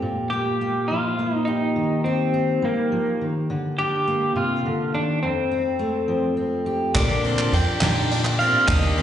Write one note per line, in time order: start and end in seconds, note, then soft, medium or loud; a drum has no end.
0.00 1.76 A#2 medium
0.00 0.94 G4 soft
0.30 0.61 A#3 soft
0.30 0.88 G4 medium
0.61 1.18 A#3 soft
0.88 1.73 F3 medium
0.88 1.35 F4 medium
1.19 4.07 A#3 soft
1.35 1.45 D#4 medium
1.45 2.04 D#4 medium
1.45 2.05 G4 soft
1.76 2.62 D#3 medium
2.04 2.64 C4 medium
2.04 5.26 G4 soft
2.34 3.46 D#4 soft
2.62 2.91 G3 soft
2.62 3.25 A#3 medium
2.92 3.21 F3 medium
3.21 3.50 D#3 medium
3.50 4.35 D3 medium
3.79 5.19 D4 soft
3.79 4.36 G4 medium
4.07 5.19 A#3 medium
4.36 4.65 C3 medium
4.36 4.90 F4 medium
4.65 4.94 D3 medium
4.94 5.23 D#3 medium
4.94 5.22 D4 medium
5.23 6.95 F2 medium
5.23 6.34 C4 medium
5.52 6.36 C4 soft
5.79 6.91 A3 medium
6.08 6.91 F3 medium
6.37 6.95 C4 soft
6.66 6.92 G4 medium
6.95 7.53 A#2 medium
6.95 7.40 A#2 medium
6.95 7.53 D3 medium
6.95 7.51 F3 medium
6.95 7.53 A#3 medium
6.95 7.23 D4 medium
6.95 7.53 D4 medium
6.95 7.55 G4 medium
6.95 7.55 D5 medium
6.95 kick loud
6.95 clap medium
6.95 ride medium
7.23 7.52 C4 medium
7.23 ride medium
7.39 clap medium
7.52 7.75 F2 medium
7.52 7.81 F3 medium
7.52 7.82 A#3 medium
7.52 7.81 D4 medium
7.52 8.38 G5 loud
7.52 ride medium
7.56 7.81 G4 medium
7.81 8.48 A#2 medium
7.81 8.40 A#2 medium
7.81 8.40 D3 medium
7.81 8.40 F3 medium
7.81 8.41 A#3 medium
7.81 8.39 D4 medium
7.81 8.10 D#4 medium
7.81 8.39 G4 medium
7.81 snare loud
7.81 clap medium
7.81 ride medium
8.11 8.39 D4 medium
8.11 ride medium
8.25 clap medium
8.39 8.67 A#3 soft
8.39 8.68 C4 medium
8.39 8.69 D4 soft
8.39 8.68 G4 soft
8.39 8.69 F5 medium
8.39 ride medium
8.43 8.68 F3 soft
8.67 9.02 D#2 medium
8.67 9.02 D#3 medium
8.67 9.02 G3 medium
8.67 9.02 A#3 medium
8.67 8.96 D4 medium
8.67 9.02 D#4 medium
8.67 9.02 G4 medium
8.67 9.02 D#5 medium
8.67 kick loud
8.67 clap medium
8.67 ride medium
8.97 9.02 C4 medium
8.97 ride medium